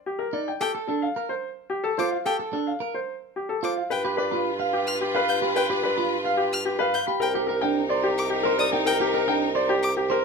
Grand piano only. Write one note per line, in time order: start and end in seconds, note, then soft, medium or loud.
0.06 0.24 G4 soft
0.19 0.37 A#4 medium
0.33 0.51 D5 soft
0.48 0.65 G5 soft
0.61 0.79 A4 medium
0.88 1.06 A4 medium
1.02 1.20 F5 medium
1.29 1.47 C5 soft
1.70 1.88 G4 medium
1.84 2.02 A4 medium
1.98 2.16 C5 medium
2.11 2.30 F5 soft
2.25 2.44 A4 medium
2.53 2.71 A4 soft
2.67 2.85 F5 soft
2.94 3.13 C5 soft
3.36 3.54 G4 soft
3.49 3.68 A4 medium
3.63 3.81 C5 soft
3.77 3.95 F5 soft
3.90 4.09 B4 medium
4.04 4.23 G4 soft
4.17 4.36 B4 medium
4.31 4.50 B5 medium
4.59 4.78 F5 soft
4.73 4.91 G4 medium
5.01 5.19 G4 medium
5.15 5.33 B4 medium
5.28 5.47 F5 medium
5.42 5.60 B5 soft
5.56 5.74 B4 medium
5.70 5.88 G4 soft
5.83 6.02 B4 medium
5.97 6.15 B5 medium
6.24 6.43 F5 medium
6.37 6.56 G4 medium
6.65 6.84 G4 medium
6.79 6.98 B4 medium
6.94 7.12 F5 medium
7.07 7.25 B5 medium
7.20 7.39 A#4 medium
7.34 7.53 G4 medium
7.47 7.66 A#4 medium
7.61 7.80 G5 medium
7.89 8.08 D5 medium
8.03 8.22 G4 medium
8.30 8.49 G4 medium
8.43 8.63 A#4 medium
8.58 8.77 D5 medium
8.72 8.90 G5 medium
8.86 9.04 A#4 medium
9.01 9.18 G4 medium
9.14 9.32 A#4 medium
9.28 9.46 G5 medium
9.55 9.73 D5 medium
9.69 9.87 G4 medium
9.97 10.15 G4 medium
10.11 10.25 A#4 medium